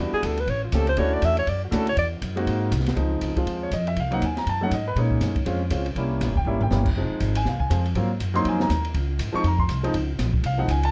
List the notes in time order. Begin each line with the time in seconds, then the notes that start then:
Already playing: E2
0.00 G3 B3 D4 E4 F#4
0.13 G#4, muted upright bass stroke
0.23 D2 A4, kick, hi-hat pedal, ride
0.37 B4, ride
0.47 A1 C#5, kick, ride
0.65 F4
0.72 C#2 A3 C4 C#4 F4 G4 A4, kick, hi-hat pedal, ride
0.87 C5, ride
0.97 D2 A3 C#4 D4 E4 F#4 C#5, kick, ride
1.14 D5
1.22 E2 E5, kick, hi-hat pedal, ride
1.37 C#5, ride
1.47 F#2 D5, kick, ride
1.64 F#4
1.71 D2 A3 C#4 D4 E4 F#4, kick, hi-hat pedal, ride
1.75 A4
1.87 C#5, ride
1.96 E2 D5, kick, ride
2.22 F#2, kick, hi-hat pedal, ride
2.36 G#3 A#3 C4 D#4 F#4, ride
2.47 G#2, kick, ride
2.72 C2, kick, hi-hat pedal, ride
2.80 snare
2.86 snare, ride
2.96 C#2 F3 G#3 C4 D#4, kick, ride
3.21 C#2, kick, hi-hat pedal, ride
3.36 F3 G#3 C4 F4, muted upright bass stroke, kick, ride
3.46 D#2, kick, ride
3.63 C#5
3.71 F2 D#5, kick, hi-hat pedal, ride
3.87 E5, ride
3.96 C2 F5, kick, ride
4.11 F#3 A#3 C4 D#4 F#5, ride
4.21 D#2 G#5, kick, hi-hat pedal, ride
4.37 A#5, snare, ride
4.46 F#2 A5, kick, ride
4.61 F#3 A3 C#4 D#4 F#5
4.71 G#2 D#5, kick, hi-hat pedal, ride
4.88 B4
4.96 A#2 G#3 A#3 C#4 D#4 C#5, kick, ride
5.11 kick
5.20 F#2, snare, hi-hat pedal, ride
5.36 kick, ride
5.46 F2 G#3 C4 C#4 F4, ride
5.70 C#2 G#3 C4 C#4 F4, kick, hi-hat pedal, ride
5.86 ride
5.95 C2 G3 A#3 C#4 E4, kick, ride
6.20 A#1, kick, snare, hi-hat pedal, ride
6.29 G1
6.36 E1 G5, kick
6.45 G#1 G3 A#3 C#4 E4 E5
6.61 G5, floor tom
6.70 G1 G3 A#3 C#4 E4, snare, hi-hat pedal
6.86 kick, crash
6.95 F1 F3 G#3 C4 D#4
7.10 muted upright bass stroke
7.20 G#1, kick, hi-hat pedal, ride
7.35 G#5, ride
7.45 C2 F5, kick, snare
7.60 G#5, kick
7.70 F2 F3 G#3 C4 F4, kick, hi-hat pedal, ride
7.85 ride
7.95 G#2 F#3 A#3 C4 F4, kick, ride
8.20 F#2, kick, hi-hat pedal, ride
8.34 F#3 A#3 C4 D#4 C6, ride
8.45 F2 G#5, kick, ride
8.60 A#5, snare
8.69 D#2, kick, hi-hat pedal, ride
8.85 ride
8.94 C#2, kick, ride
9.19 G#2, kick, hi-hat pedal, ride
9.33 F3 G#3 C4 D#4 C#6, muted upright bass stroke
9.44 F2 A#5, kick, ride
9.59 C6, kick
9.69 C2, kick, hi-hat pedal, ride
9.83 F3 G#3 C4 D#4, ride
9.93 C#2, kick, ride
10.19 A#1, kick, snare, hi-hat pedal, ride
10.34 kick
10.43 C2 F5, ride
10.58 F3 G#3 C4 D#4 F#5
10.68 C#2 G#5, kick, hi-hat pedal, ride
10.83 A5, ride